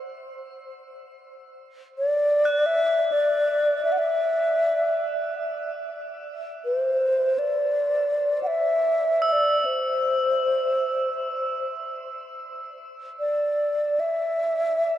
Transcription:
0.00 3.03 E6 soft
1.98 2.67 D5 medium
2.45 9.92 F#6 soft
2.66 3.13 E5 loud
3.12 3.84 D5 medium
3.85 3.93 E5 medium
3.92 4.00 F#5 medium
3.98 5.50 E5 medium
6.65 7.40 C5 medium
7.39 8.42 D5 medium
8.43 9.29 E5 medium
8.43 8.49 F#5 medium
9.22 14.98 E6 soft
9.29 9.61 D5 medium
9.29 9.34 E5 medium
9.61 9.67 D5 soft
9.65 11.74 C5 medium
13.20 14.01 D5 medium
14.00 14.98 E5 medium

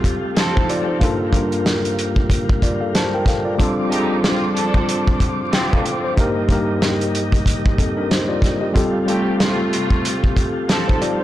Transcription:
0.00 8.71 G2 medium
0.00 1.03 G3 medium
0.00 3.55 G3 medium
0.00 0.98 A3 medium
0.00 1.03 C4 medium
0.00 0.70 F4 medium
0.00 3.55 F4 medium
0.00 1.03 G4 medium
0.00 1.03 A4 medium
0.04 kick medium
0.04 closed hi-hat medium
0.37 0.63 F3 loud
0.37 0.63 C4 loud
0.37 0.63 A4 loud
0.37 snare loud
0.37 closed hi-hat loud
0.55 0.69 D#4 medium
0.55 0.68 C5 medium
0.55 kick loud
0.69 0.88 F4 medium
0.69 0.87 D5 medium
0.69 closed hi-hat medium
0.88 1.19 D#4 medium
0.88 1.19 C5 medium
0.99 1.24 G2 medium
0.99 1.25 A#3 medium
0.99 3.57 A#3 medium
0.99 1.25 D4 medium
0.99 1.26 F4 medium
0.99 1.26 A4 loud
0.99 kick loud
0.99 closed hi-hat medium
1.32 2.23 G2 medium
1.32 2.24 A#3 medium
1.32 2.24 D4 medium
1.32 2.24 F4 medium
1.32 kick medium
1.32 closed hi-hat medium
1.36 2.25 A#4 medium
1.52 closed hi-hat medium
1.66 snare loud
1.66 closed hi-hat medium
1.85 closed hi-hat medium
1.99 closed hi-hat medium
2.16 kick medium
2.30 kick medium
2.30 closed hi-hat loud
2.49 kick loud
2.62 2.81 F4 medium
2.62 2.81 D5 medium
2.62 kick medium
2.62 closed hi-hat medium
2.81 2.94 A4 medium
2.81 2.94 F5 medium
2.95 3.13 C5 medium
2.95 3.13 A5 medium
2.95 snare loud
2.95 closed hi-hat loud
3.14 3.27 A#4 medium
3.14 3.27 G5 medium
3.26 3.46 A4 medium
3.26 3.46 F5 medium
3.26 kick loud
3.26 snare soft
3.26 closed hi-hat medium
3.45 3.60 F4 medium
3.45 3.76 D5 medium
3.58 6.15 F3 medium
3.58 3.83 G3 medium
3.58 6.14 C4 medium
3.58 3.83 C4 medium
3.58 3.84 D4 medium
3.58 3.84 F4 medium
3.58 6.14 D5 medium
3.58 kick loud
3.58 closed hi-hat medium
3.62 3.85 A4 loud
3.89 4.16 G3 medium
3.89 4.81 G3 medium
3.89 4.81 C4 medium
3.89 4.82 D4 medium
3.89 4.16 D#4 medium
3.89 4.82 F4 medium
3.89 4.16 G4 medium
3.89 closed hi-hat medium
3.93 4.00 G#4 medium
4.00 4.86 A4 medium
4.24 4.50 D3 medium
4.24 4.50 C4 medium
4.24 4.50 F4 loud
4.24 snare loud
4.24 closed hi-hat medium
4.54 5.16 F3 medium
4.54 5.16 D4 medium
4.54 5.16 A4 medium
4.54 closed hi-hat medium
4.74 kick medium
4.89 closed hi-hat loud
5.07 kick loud
5.20 kick medium
5.20 closed hi-hat medium
5.53 5.79 D3 loud
5.53 5.79 C4 loud
5.53 5.79 F4 loud
5.53 5.71 G5 medium
5.53 snare loud
5.53 closed hi-hat loud
5.73 6.04 A4 medium
5.73 6.03 F5 medium
5.73 kick loud
5.86 closed hi-hat medium
6.04 6.35 C5 medium
6.16 6.41 G2 medium
6.16 8.73 G3 medium
6.16 6.41 A#3 medium
6.16 8.73 A#3 medium
6.16 8.73 D#4 medium
6.16 6.42 D#4 medium
6.16 6.42 G4 medium
6.16 kick loud
6.16 closed hi-hat medium
6.20 6.43 A#4 loud
6.48 7.39 G2 medium
6.48 7.40 A#3 medium
6.48 7.40 D#4 medium
6.48 7.41 G4 medium
6.48 kick loud
6.48 closed hi-hat medium
6.53 7.41 A#4 medium
6.82 snare loud
6.82 closed hi-hat medium
7.01 closed hi-hat medium
7.15 closed hi-hat medium
7.32 kick medium
7.32 closed hi-hat medium
7.46 kick medium
7.46 closed hi-hat loud
7.66 kick loud
7.78 7.97 C4 medium
7.78 7.97 A4 medium
7.78 kick medium
7.78 closed hi-hat medium
7.97 8.10 D4 medium
7.97 8.10 A#4 medium
8.11 8.29 D#4 medium
8.11 8.29 C5 medium
8.11 snare loud
8.11 closed hi-hat loud
8.28 8.60 F4 medium
8.28 8.60 D5 medium
8.42 kick loud
8.42 snare soft
8.42 closed hi-hat medium
8.61 8.74 G4 medium
8.61 8.92 D#5 medium
8.72 11.24 G2 medium
8.72 8.98 G3 medium
8.72 11.24 G3 medium
8.72 11.24 A3 medium
8.72 8.98 C4 medium
8.72 11.24 F4 medium
8.72 8.99 F4 medium
8.72 8.99 G4 medium
8.72 kick loud
8.72 closed hi-hat medium
8.77 9.00 A4 medium
9.06 9.33 C3 medium
9.06 9.97 G3 medium
9.06 9.33 A3 medium
9.06 9.98 C4 medium
9.06 9.98 F4 medium
9.06 9.33 G4 medium
9.06 9.99 G4 medium
9.06 closed hi-hat medium
9.10 9.99 A4 medium
9.40 9.68 C3 medium
9.40 9.68 A3 medium
9.40 9.68 F4 loud
9.40 snare loud
9.40 closed hi-hat medium
9.71 10.32 C3 medium
9.71 10.32 A3 medium
9.71 10.32 F4 medium
9.71 closed hi-hat medium
9.90 kick medium
10.05 closed hi-hat loud
10.24 kick loud
10.36 kick medium
10.36 closed hi-hat medium
10.69 10.96 F3 loud
10.69 10.96 C4 medium
10.69 10.96 A4 loud
10.69 snare loud
10.69 closed hi-hat loud
10.88 11.01 D#4 medium
10.88 11.01 C5 medium
10.88 kick loud
11.02 11.20 F4 medium
11.02 11.19 D5 medium
11.02 closed hi-hat medium
11.20 11.24 D#4 medium
11.20 11.24 C5 medium

